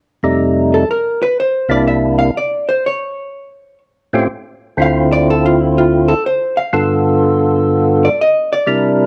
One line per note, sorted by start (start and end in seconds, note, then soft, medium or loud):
0.23 0.85 F2 medium
0.23 0.85 C3 medium
0.23 0.85 G3 medium
0.23 0.85 A3 medium
0.23 0.85 D#4 medium
0.74 0.89 A4 medium
0.91 1.21 A#4 medium
1.22 1.37 B4 loud
1.40 1.70 C5 medium
1.69 2.31 C2 medium
1.69 2.31 C3 medium
1.69 2.31 A#3 medium
1.69 2.31 D4 medium
1.69 2.31 E4 medium
1.69 1.86 D5 medium
1.88 2.18 E5 medium
2.19 2.34 F5 loud
2.37 2.68 D5 medium
2.69 2.83 C5 medium
2.86 3.78 C#5 medium
4.13 4.27 A2 medium
4.13 4.28 A3 medium
4.13 4.28 C4 medium
4.13 4.28 C#4 medium
4.13 4.28 F4 medium
4.13 4.28 G4 medium
4.77 6.14 D2 medium
4.77 6.14 D3 medium
4.77 6.14 C4 medium
4.77 6.14 E4 medium
4.77 6.15 F4 medium
4.82 5.12 F5 medium
5.13 5.27 D5 loud
5.30 5.44 A4 medium
5.46 5.61 F4 medium
5.61 5.76 E4 medium
5.78 6.09 F4 medium
6.08 6.23 A4 loud
6.26 6.57 C5 medium
6.57 7.17 F5 medium
6.73 8.09 G2 medium
6.73 8.09 D3 medium
6.73 8.09 B3 medium
6.73 8.09 F4 medium
6.73 8.10 A4 medium
8.05 8.19 D5 medium
8.22 8.52 D#5 loud
8.53 8.67 D5 loud
8.67 9.06 C3 medium
8.67 9.06 G3 medium
8.67 9.06 D4 medium
8.67 9.06 E4 medium
8.67 9.06 A#4 medium